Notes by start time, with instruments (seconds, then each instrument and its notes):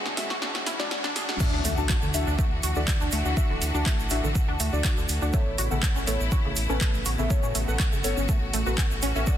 Already playing: string section C#3 E3 G#3 F#4, synth stab G#3 F#4 G#5, riser
0.05 analog synth bass D2, synth pluck D3, snare
0.17 analog synth bass D2, synth stab G#3 F#4 E5, snare, open hi-hat
0.30 analog synth bass D2, synth pluck F#4, snare
0.42 synth pluck D4, snare
0.55 analog synth bass B1, snare
0.66 analog synth bass B1, synth pluck E4, snare, open hi-hat
0.79 analog synth bass B1, synth stab G#3 F#4 D5, synth pluck D4, snare
0.91 snare
1.04 analog synth bass E2, synth pluck D4, snare
1.15 analog synth bass E2, synth pluck G#4, snare, open hi-hat
1.28 analog synth bass E2, synth stab G#3 F#4 F#5, snare
1.40 string section E3 A3 D4 F#4, synth stab D4 F#4 E5, kick, crash, impact, shaker
1.53 analog synth bass D2, synth pluck D4
1.65 analog synth bass D2, synth pluck A3, open hi-hat, shaker
1.77 analog synth bass D2, synth stab D4 F#4 A5, shaker
1.89 synth pluck F#4, kick, clap, shaker
2.02 analog synth bass D2, synth pluck D3, shaker
2.14 analog synth bass D2, synth stab D4 F#4 E5, open hi-hat, shaker
2.27 analog synth bass D2, synth pluck D4, shaker
2.39 synth pluck A3, kick, shaker
2.51 analog synth bass D2
2.63 analog synth bass D2, synth pluck F#4, open hi-hat, shaker
2.75 analog synth bass D2, synth pluck D3, synth stab D4 F#4 D5, shaker
2.87 kick, clap, shaker
3.01 analog synth bass D2, synth pluck D4, shaker
3.12 analog synth bass D2, synth pluck A3, open hi-hat, shaker
3.25 analog synth bass D2, synth stab D4 F#4 F#5, shaker
3.37 synth stab D4 F#4 E5, synth pluck F#4, kick, shaker
3.50 analog synth bass D1, synth pluck D3
3.61 analog synth bass D2, open hi-hat, shaker
3.74 analog synth bass D2, synth pluck D4, synth stab D4 F#4 A5, shaker
3.86 synth pluck A3, kick, clap, shaker
3.99 analog synth bass A1, shaker
4.10 analog synth bass A1, synth stab D4 F#4 E5, synth pluck F#4, open hi-hat, shaker
4.24 analog synth bass A1, synth pluck D3, shaker
4.35 kick, shaker
4.48 analog synth bass D2, synth pluck D4
4.60 analog synth bass D2, synth pluck A3, open hi-hat, shaker
4.73 analog synth bass D2, synth stab D4 F#4 D5, shaker
4.84 synth pluck F#4, kick, clap, shaker
4.97 analog synth bass D2, synth pluck D3, shaker
5.09 analog synth bass D2, open hi-hat, shaker
5.22 analog synth bass D2, synth stab D4 F#4 F#5, synth pluck D4, shaker
5.33 string section C#3 B3 E4, synth pluck A3, synth stab B3 A4 C#5, kick, shaker
5.47 analog synth bass A1
5.58 analog synth bass A1, synth pluck F#4, open hi-hat, shaker
5.71 analog synth bass A1, synth pluck C#3, synth stab B3 A4 F#5, shaker
5.83 kick, clap, shaker
5.96 analog synth bass A1, synth pluck C#4, shaker
6.07 analog synth bass A1, synth pluck A3, synth stab B3 A4 C#5, open hi-hat, shaker
6.20 analog synth bass A1, shaker
6.32 synth pluck F#4, kick, shaker
6.45 analog synth bass A1, synth pluck C#3
6.56 analog synth bass A1, open hi-hat, shaker
6.70 analog synth bass A1, synth stab B3 A4 B4, synth pluck C#4, shaker
6.81 synth pluck A3, kick, clap, shaker
6.94 analog synth bass A1, shaker
7.05 analog synth bass A1, synth pluck F#4, open hi-hat, shaker
7.18 analog synth bass A1, synth pluck C#3, synth stab B3 A4 E5, shaker
7.30 synth stab B3 A4 C#5, string section F#4, kick, shaker
7.43 analog synth bass A2, synth pluck C#4, shaker
7.55 analog synth bass A1, synth pluck A3, open hi-hat, shaker
7.68 analog synth bass A1, synth stab B3 A4 F#5, shaker
7.79 synth pluck F#4, kick, clap, shaker
7.93 analog synth bass G1, synth pluck C#3, shaker
8.04 analog synth bass G1, synth stab B3 A4 C#5, open hi-hat, shaker
8.17 analog synth bass G1, synth pluck C#4, shaker
8.29 synth pluck A3, kick, shaker
8.42 analog synth bass A1
8.53 analog synth bass A1, synth pluck A3, open hi-hat, shaker
8.66 analog synth bass A1, synth stab B3 A4 B4, synth pluck F#4, shaker
8.78 synth pluck C#4, kick, clap, shaker
8.91 analog synth bass A1, shaker
9.02 analog synth bass A1, synth pluck C#4, open hi-hat, shaker
9.16 analog synth bass A1, synth stab B3 A4 E5, synth pluck C#4, shaker
9.27 string section D3, synth stab B3 A4 D5, synth pluck F#4, kick, shaker